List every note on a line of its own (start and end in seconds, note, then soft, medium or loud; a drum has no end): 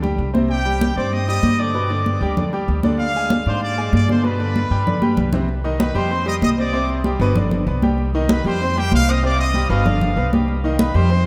0.00 0.15 D2 loud
0.00 0.28 G3 medium
0.00 0.28 G4 medium
0.00 0.28 G5 medium
0.00 high conga soft
0.00 low conga medium
0.18 0.91 C2 medium
0.18 high conga soft
0.33 0.59 C3 medium
0.33 0.59 C4 medium
0.33 0.60 C5 medium
0.33 high conga medium
0.49 0.93 G4 medium
0.49 0.93 G5 loud
0.49 high conga soft
0.65 0.91 G3 medium
0.65 0.91 G4 medium
0.65 0.91 G5 medium
0.65 high conga soft
0.81 high conga medium
0.96 1.40 G2 medium
0.96 1.23 C4 medium
0.96 1.23 C5 medium
0.96 1.11 D5 medium
0.96 1.23 C6 medium
0.96 1.11 D6 medium
0.96 high conga soft
1.13 1.27 D#5 medium
1.13 1.27 D#6 medium
1.13 high conga soft
1.28 1.54 G3 medium
1.28 1.54 G4 medium
1.28 1.57 D#5 medium
1.28 1.54 G5 medium
1.28 1.57 D#6 medium
1.28 high conga soft
1.43 2.15 G2 medium
1.43 high conga medium
1.59 1.72 D3 medium
1.59 1.72 D4 medium
1.59 2.53 D5 medium
1.59 1.72 D5 medium
1.59 2.53 D6 medium
1.74 1.87 B2 medium
1.74 1.87 B3 medium
1.74 1.88 B4 medium
1.74 high conga soft
1.90 2.16 D3 medium
1.90 2.16 D4 medium
1.90 2.16 D5 medium
1.90 high conga soft
2.06 high conga medium
2.21 2.64 D2 medium
2.21 2.34 G3 medium
2.21 2.35 G4 medium
2.21 2.35 G5 medium
2.37 2.50 D3 medium
2.37 2.50 D4 medium
2.37 2.50 D5 medium
2.37 high conga soft
2.37 low conga medium
2.53 2.78 G3 medium
2.53 2.79 G4 medium
2.53 2.79 G5 medium
2.53 high conga soft
2.68 3.40 D2 medium
2.68 high conga soft
2.83 3.09 D3 medium
2.83 3.09 D4 medium
2.83 3.10 D5 medium
2.83 high conga medium
2.99 3.43 F5 loud
2.99 high conga soft
3.15 3.41 G#3 medium
3.15 3.41 G#4 medium
3.15 3.41 G#5 medium
3.15 high conga soft
3.30 high conga medium
3.46 3.89 G#2 medium
3.46 3.72 D4 medium
3.46 3.62 C5 medium
3.46 3.72 D5 medium
3.46 3.62 C6 medium
3.46 3.72 D6 medium
3.46 high conga soft
3.62 3.91 D5 loud
3.62 3.91 D6 medium
3.62 high conga soft
3.77 4.03 G#3 medium
3.77 4.03 G#4 medium
3.77 4.03 G#5 medium
3.77 high conga soft
3.93 4.65 G2 loud
3.93 4.08 D5 loud
3.93 4.08 D6 medium
3.93 high conga medium
4.08 4.21 D3 medium
4.08 4.21 D4 medium
4.08 4.23 C5 medium
4.08 4.22 D5 medium
4.08 4.24 C6 medium
4.08 high conga medium
4.23 4.36 B2 medium
4.23 4.37 B3 medium
4.23 4.37 B4 medium
4.23 5.29 B4 medium
4.23 5.30 B5 medium
4.23 high conga soft
4.39 4.65 D3 medium
4.39 4.65 D4 medium
4.39 4.65 D5 medium
4.39 high conga soft
4.56 high conga medium
4.70 5.14 G2 medium
4.70 4.84 G3 medium
4.70 4.84 G4 medium
4.70 4.84 G5 medium
4.87 4.99 D3 medium
4.87 4.99 D4 medium
4.87 5.00 D5 medium
4.87 high conga soft
4.87 low conga medium
5.02 5.28 G3 medium
5.02 5.28 G4 medium
5.02 5.28 G5 medium
5.02 high conga medium
5.17 5.90 C2 medium
5.17 low conga medium
5.33 5.46 C3 medium
5.33 5.46 C4 medium
5.33 5.46 C5 medium
5.33 low conga loud
5.48 high conga soft
5.64 5.90 D#3 medium
5.64 5.90 D#4 medium
5.64 5.90 D#5 medium
5.64 high conga soft
5.80 5.95 B4 medium
5.80 5.95 B5 medium
5.80 high conga loud
5.95 6.38 F2 loud
5.95 6.08 G3 medium
5.95 6.08 G4 medium
5.95 6.26 C5 medium
5.95 6.08 G5 medium
5.95 6.27 C6 medium
5.95 high conga soft
6.11 6.24 C4 medium
6.11 6.24 C5 medium
6.11 6.24 C6 medium
6.11 high conga soft
6.26 6.52 G3 medium
6.26 6.52 G4 medium
6.26 6.34 D#5 loud
6.26 6.52 G5 medium
6.26 6.34 D#6 medium
6.26 high conga soft
6.42 7.14 C2 loud
6.42 6.49 D#5 loud
6.42 6.50 D#6 medium
6.42 high conga medium
6.58 6.71 C4 medium
6.58 6.71 C5 medium
6.58 6.87 D5 loud
6.58 6.71 C6 medium
6.58 6.87 D6 medium
6.73 6.99 C3 medium
6.73 6.99 C4 medium
6.73 6.99 C5 medium
6.73 high conga soft
6.89 high conga soft
7.04 7.18 G3 medium
7.04 7.18 G4 medium
7.04 7.18 G5 medium
7.04 high conga medium
7.20 7.63 G1 loud
7.20 7.33 B2 loud
7.20 7.33 B3 loud
7.20 7.34 B4 loud
7.36 7.62 D3 medium
7.36 7.62 D4 medium
7.36 7.62 D5 medium
7.36 high conga soft
7.36 low conga medium
7.51 high conga soft
7.51 low conga medium
7.67 8.39 C2 loud
7.67 7.80 B3 medium
7.67 7.80 B4 medium
7.67 7.80 B5 medium
7.67 high conga soft
7.82 8.08 G3 medium
7.82 8.08 G4 medium
7.82 8.09 G5 medium
7.82 high conga medium
7.98 high conga soft
8.14 8.40 D#3 medium
8.14 8.40 D#4 medium
8.14 8.40 D#5 medium
8.14 high conga soft
8.29 8.45 B4 medium
8.29 8.44 B5 medium
8.29 high conga loud
8.44 8.88 F2 loud
8.44 8.58 G3 medium
8.44 8.58 G4 medium
8.44 8.75 C5 loud
8.44 8.59 G5 medium
8.44 8.75 C6 medium
8.44 high conga soft
8.61 8.74 C4 medium
8.61 8.74 C5 medium
8.61 8.74 C6 medium
8.61 high conga soft
8.76 9.02 G3 medium
8.76 8.92 G4 medium
8.76 9.02 G4 medium
8.76 8.92 G5 loud
8.76 9.03 G5 medium
8.76 high conga soft
8.92 9.64 C2 medium
8.92 9.07 F5 loud
8.92 high conga medium
9.09 9.21 C4 medium
9.09 9.21 C5 medium
9.09 9.23 D#5 loud
9.09 9.21 C6 medium
9.09 9.24 D#6 medium
9.23 9.48 C3 medium
9.23 9.49 C4 medium
9.23 9.49 C5 medium
9.23 9.38 D5 loud
9.23 9.38 D6 medium
9.23 high conga soft
9.39 9.68 D#5 loud
9.39 9.68 D#6 medium
9.39 high conga soft
9.54 9.67 G3 medium
9.54 9.67 G4 medium
9.54 9.67 G5 medium
9.54 high conga medium
9.69 10.13 G1 loud
9.69 9.83 B2 loud
9.69 9.83 B3 loud
9.69 9.83 B4 loud
9.69 10.28 F5 medium
9.86 10.11 D3 medium
9.86 10.11 D4 medium
9.86 10.11 D5 medium
9.86 high conga soft
9.86 low conga medium
10.01 high conga soft
10.01 low conga medium
10.16 10.89 C2 medium
10.16 10.30 B3 medium
10.16 10.29 B4 medium
10.16 10.30 B5 medium
10.16 high conga soft
10.33 10.58 G3 medium
10.33 10.58 G4 medium
10.33 10.58 G5 medium
10.33 high conga medium
10.48 high conga soft
10.64 10.89 D#3 medium
10.64 10.89 D#4 medium
10.64 10.90 D#5 medium
10.64 high conga soft
10.79 10.93 B4 medium
10.79 10.94 B5 medium
10.79 high conga loud
10.94 11.26 F2 loud
10.94 11.07 G3 medium
10.94 11.07 G4 medium
10.94 11.25 C5 loud
10.94 11.07 G5 medium
10.94 11.26 C6 medium
10.94 high conga soft
11.10 11.22 C4 medium
11.10 11.23 C5 medium
11.10 11.23 C6 medium
11.10 high conga soft